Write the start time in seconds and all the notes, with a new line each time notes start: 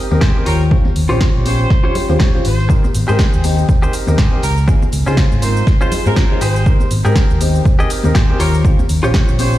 0.11 D#2 C4 D#4 G4 A#4, muted clean electric guitar stroke, tambourine, high conga
0.21 G#2 G4 G#4 C5, kick, snare
0.35 C4 D#4 G4 A#4
0.45 D#2 F4 G4 A#4 C5 C#5, open hi-hat, tambourine
0.61 tambourine
0.71 C#4 F4 G4 C5, kick, tambourine
0.85 muted clean electric guitar stroke, muted fingered electric bass stroke, tambourine, high conga
0.96 D#2, open hi-hat, tambourine
1.09 A#1 C#4 F4 G4 C5 C#5, tambourine
1.21 kick, snare, tambourine
1.35 A#1, tambourine
1.45 C#4 F4 G4 C5 C#5, open hi-hat, tambourine, high conga
1.59 tambourine
1.70 kick, snare, tambourine
1.84 C#4 F4 G4 C5 C#5
1.95 open hi-hat, tambourine, low conga
2.09 D#2 C#4 F4 G4 C5, muted clean electric guitar stroke, tambourine, high conga
2.19 A#1 F4 G4 C5 C#5, kick, snare, tambourine
2.34 C#4 F4 G4 C5, tambourine
2.45 G#1 C5, open hi-hat, tambourine
2.59 tambourine
2.69 C4 D#4 G4 A#4, muted clean electric guitar stroke, kick, tambourine, shaker
2.83 muted clean electric guitar stroke, tambourine, high conga, shaker
2.94 G#1, open hi-hat, tambourine, shaker
3.08 G#2 C4 D#4 G4 G#4 A#4 C5, tambourine, shaker
3.19 kick, snare, tambourine, shaker
3.33 D#2, tambourine, shaker
3.44 C4 D#4 G4 C5, open hi-hat, tambourine, high conga, shaker
3.58 tambourine, shaker
3.68 kick, tambourine, shaker
3.82 C4 D#4 G4 G#4 A#4 C5, shaker
3.93 open hi-hat, tambourine, shaker
4.07 D#2 C4 D#4 G4 A#4, muted clean electric guitar stroke, tambourine, high conga, shaker
4.18 G#2 G4 G#4 C5, kick, snare, tambourine, shaker
4.32 C4 D#4 G4 A#4
4.42 C#2 A#4, open hi-hat, tambourine, shaker
4.57 tambourine, shaker
4.67 C4 D#4 F4 G#4, muted clean electric guitar stroke, kick, tambourine, shaker
4.82 muted clean electric guitar stroke, muted fingered electric bass stroke, tambourine, high conga, shaker
4.92 C#2, open hi-hat, tambourine, shaker
5.06 C#3 C4 C#4 D#4 F4 G#4 C5, tambourine, shaker
5.17 kick, snare, shaker
5.32 G#2, tambourine, shaker
5.42 C4 D#4 F4 A#4 C5, open hi-hat, tambourine, high conga, shaker
5.56 tambourine, shaker
5.67 kick, snare, tambourine, shaker
5.81 C4 C#4 D#4 F4 G#4 C5, shaker
5.91 open hi-hat, tambourine, low conga, shaker
6.06 G#2 C4 D#4 F4 G#4 A#4, muted clean electric guitar stroke, tambourine, high conga, shaker
6.16 C#3 C#4 F4 C5, kick, snare, shaker
6.31 C4 D#4 F4 G#4
6.41 G#1 G4 G#4 C5, open hi-hat, tambourine, shaker
6.56 tambourine, shaker
6.66 C4 D#4 G4 A#4, kick, tambourine, shaker
6.80 muted clean electric guitar stroke, tambourine, high conga, shaker
6.91 G#1, open hi-hat, tambourine, shaker
7.04 G#2 C4 D#4 G4 G#4 A#4, tambourine, shaker
7.16 kick, snare, shaker
7.30 D#2, tambourine, shaker
7.41 C4 D#4 G4 C5, open hi-hat, tambourine, high conga, shaker
7.54 tambourine, shaker
7.65 kick, tambourine, shaker
7.79 C4 D#4 G4 G#4 A#4 D#5, shaker
7.90 open hi-hat, tambourine, shaker
8.04 D#2 C4 D#4 G4 A#4, muted clean electric guitar stroke, tambourine, high conga, shaker
8.15 G#2 G4 G#4 C5, kick, snare, tambourine, shaker
8.29 C4 D#4 G4 A#4
8.39 D#2 F4 G4 A#4 C5 C#5, open hi-hat, tambourine, shaker
8.54 tambourine, shaker
8.64 C#4 F4 G4 C5, kick, shaker
8.79 muted clean electric guitar stroke, muted fingered electric bass stroke, tambourine, high conga, shaker
8.89 D#2, open hi-hat, tambourine, shaker
9.03 A#1 C#4 F4 G4 C5 C#5, tambourine, shaker
9.14 kick, snare, shaker
9.28 A#1, tambourine, shaker
9.39 C#4 F4 G4 C5 C#5, open hi-hat, tambourine, high conga, shaker
9.53 tambourine, shaker